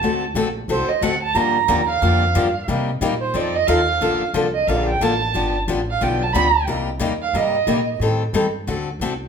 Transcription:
X:1
M:4/4
L:1/16
Q:"Swing" 1/4=180
K:Gm
V:1 name="Violin"
a2 z6 c2 e2 ^f2 a2 | b6 f8- f2 | z6 c2 d2 e2 f4- | [K:Bb] f2 z4 e2 f2 g2 a4- |
a2 z4 f2 g2 a2 =b3 z | z6 f2 e6 z2 | z16 |]
V:2 name="Steel-string acoustic guitar"
[D,A,C^FA]2 z2 [D,A,CFA]2 z2 [D,A,CFA]2 z2 [D,A,CFA]2 z2 | [D,F,B,DG]2 z2 [D,F,B,DG]2 z2 [D,F,B,DG]2 z2 [D,F,B,DG]2 z2 | [C,G,B,EG]2 z2 [C,G,B,EG]2 z2 [F,CEA]2 z2 [F,CEA]2 z2 | [K:Bb] [D,F,B,DA]2 z2 [D,F,B,DA]2 z2 [D,F,B,DA]2 z2 [D,F,B,DA]2 z2 |
[D,F,=B,DG]2 z2 [D,F,B,DG]2 z2 [D,F,B,DG]2 z2 [D,F,B,DG]2 z2 | [C,G,B,EG]2 z2 [C,G,B,EG]2 z2 [C,G,B,EG]2 z2 [C,G,B,EG]2 z2 | [E,G,CGA]2 z2 [E,G,CGA]2 z2 [D,A,C^FA]2 z2 [D,A,CFA]2 z2 |]
V:3 name="Upright bass" clef=bass
D,,4 B,,,4 C,,2 z2 D,,4 | G,,4 E,,4 F,,4 G,,4 | C,4 B,,4 F,,4 E,,4 | [K:Bb] B,,,2 z2 C,,4 B,,,4 A,,,4 |
G,,,4 A,,,4 =B,,,4 D,,4 | C,,4 E,,4 G,,4 B,,4 | A,,4 G,,4 D,,4 C,,4 |]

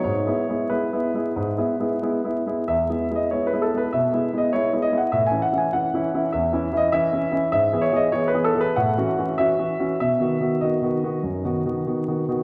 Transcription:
X:1
M:4/4
L:1/16
Q:1/4=96
K:E
V:1 name="Grand piano"
c4 B8- B2 z2 | e3 d c B A B e3 d c2 d f | e g f g f4 e3 d e4 | e2 c d c B A B f4 e4 |
e4 d8 z4 |]
V:2 name="Grand piano"
(3G,,2 [G,B,E]2 [G,B,E]2 (3[G,B,E]2 [G,B,E]2 [G,B,E]2 (3G,,2 [G,B,E]2 [G,B,E]2 (3[G,B,E]2 [G,B,E]2 [G,B,E]2 | (3E,,2 [G,B,E]2 [G,B,E]2 (3[G,B,E]2 [G,B,E]2 [G,B,E]2 (3B,,2 [G,B,E]2 [G,B,E]2 (3[G,B,E]2 [G,B,E]2 [G,B,E]2 | (3A,,2 [E,CE]2 [E,CE]2 (3[E,CE]2 [E,CE]2 [E,CE]2 (3E,,2 [E,CE]2 [E,CE]2 (3[E,CE]2 [E,CE]2 [E,CE]2 | (3G,,2 [E,B,G]2 [E,B,G]2 (3[E,B,G]2 [E,B,G]2 [E,B,G]2 (3A,,2 [E,CF]2 [E,CF]2 (3[E,CF]2 [E,CF]2 [E,CF]2 |
(3B,,2 [D,B,F]2 [D,B,F]2 (3[D,B,F]2 [D,B,F]2 [D,B,F]2 (3F,,2 [D,B,F]2 [D,B,F]2 (3[D,B,F]2 [D,B,F]2 [D,B,F]2 |]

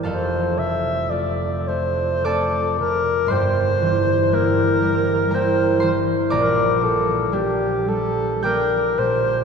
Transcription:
X:1
M:3/4
L:1/16
Q:1/4=58
K:Cmix
V:1 name="Alto saxophone"
c2 e2 d2 c2 A2 B2 | c4 B4 c3 z | [K:Gdor] B2 A2 G2 A2 B2 c2 |]
V:2 name="Harp"
[Afa]8 [dad']4 | [cgc']8 [Bgb]2 [cc']2 | [K:Gdor] [dbd']8 [gd'g']4 |]
V:3 name="Harp" clef=bass
[F,,,F,,]2 C,2 [A,CF]2 A,2 [A,CF]2 C,2 | [G,,,G,,]2 E,2 [G,B,E]2 G,2 [G,B,E]2 E,2 | [K:Gdor] B,,,2 B,,2 [G,B,D]2 G,2 [G,B,D]2 B,,2 |]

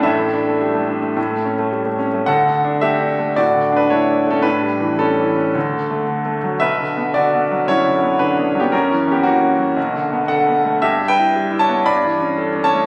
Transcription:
X:1
M:4/4
L:1/16
Q:1/4=113
K:D
V:1 name="Grand piano"
[EAe]12- [EAe]2 z2 | [Af]4 [Ge]4 [Fd]3 [DB] [Ec]3 [CA] | [DB]4 [CA]8- [CA]2 z2 | [Be]4 [Fd]4 [Ec]4 [DB]3 [B,G] |
[C^A]3 [B,G] [^A,F]8 [=Af]4 | [Ge]2 [Bg]4 [ca]2 [db]6 [ca]2 |]
V:2 name="Grand piano"
[A,,,A,,] A, D A, G, A, D A, A,, A, C A, G, A, C A, | (3D,,2 D,2 D2 (3A,2 D2 A,2 (3A,,2 D,2 D2 (3A,2 D2 A,2 | (3A,,2 G,2 E,2 (3G,2 E,2 C2 (3D,,2 D,2 A,2 (3D,2 A,2 F,2 | (3B,,,2 D,2 B,2 (3D,2 B,2 F,2 (3F,,2 D,2 B,2 (3D,2 B,2 F,2 |
(3F,,2 E,2 C2 (3E,2 C2 F,2 (3B,,,2 D,2 B,2 (3D,2 B,2 A,2 | (3G,,2 G,2 E2 (3G,2 E2 B,2 (3G,,2 E,2 C2 (3A2 C2 A,2 |]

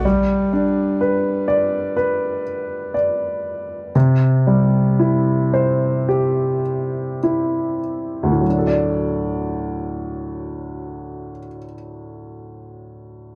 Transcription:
X:1
M:4/4
L:1/8
Q:1/4=54
K:Dmix
V:1 name="Upright piano"
G, D B d B2 d2 | C, G, E c G2 E2 | [D,,A,,F,DAd]8 |]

